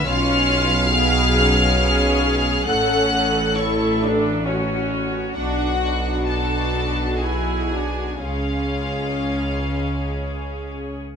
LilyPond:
<<
  \new Staff \with { instrumentName = "Violin section" } { \time 3/4 \key cis \phrygian \tempo 4 = 66 eis'''2. | fis'''4 cis'''8 r4. | fis''4 a''4 gis''4 | eis''2~ eis''8 r8 | }
  \new Staff \with { instrumentName = "Violin section" } { \time 3/4 \key cis \phrygian eis''2. | fis''4 cis''8 r4. | fis'4 a'4 gis'4 | eis'2~ eis'8 r8 | }
  \new Staff \with { instrumentName = "Viola section" } { \time 3/4 \key cis \phrygian << { eis'4 gis'4 gis'4 | a'8 a'4. fis'4~ | fis'2. | gis'2. | } \\ { cis'4 b8 cis'4. | cis'4 e'8 d'8 cis'4 | d'8 d'4. e'8 d'8 | cis'2. | } >> }
  \new Staff \with { instrumentName = "Cello section" } { \clef bass \time 3/4 \key cis \phrygian b,2. | a,2. | b,2. | cis2. | }
  \new Staff \with { instrumentName = "Double bass section" } { \clef bass \time 3/4 \key cis \phrygian b,,2. | a,,2. | b,,2. | cis,2. | }
>>